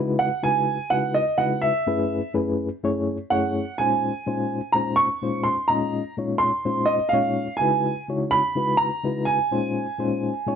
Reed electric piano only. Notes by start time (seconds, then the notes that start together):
Already playing: C#3 G#3 D#4 E4 F#4 B4
0.43 C#3 G#3 D#4 E4 F#4 B4
0.91 C#3 G#3 D#4 E4 F#4 B4
1.38 C#3 G#3 D#4 E4 F#4 B4
1.87 F#2 A3 C#4 E4 G#4 B4
2.34 F#2 A3 C#4 E4 G#4 B4
2.84 F#2 A3 C#4 E4 G#4 C#5
3.31 F#2 A3 C#4 E4 G#4 C#5
3.80 A#2 G#3 C#4 D#4 F4 C5
4.26 A#2 G#3 C#4 D#4 F4 C5
4.74 A#2 G#3 C#4 D#4 F4 C5
5.22 A#2 G#3 C#4 D#4 F4 C5
5.69 A#2 G#3 C#4 D#4 F4 D#5
6.18 A#2 G#3 C#4 D#4 F4 C#5
6.65 A#2 G#3 C#4 D#4 F4 C5
7.12 A#2 G#3 C#4 D#4 F4 C#5
7.60 C#3 G#3 D#4 E4 F#4 B4
8.09 C#3 G#3 D#4 E4 F#4 C#5
8.55 C#3 G#3 D#4 E4 F#4 B4
9.04 C#3 G#3 D#4 E4 F#4 B4
9.51 A#2 G#3 C#4 D#4 F4 C5
9.99 A#2 G#3 C#4 D#4 F4 C5
10.47 A#2 G#3 C#4 D#4 F4 C#5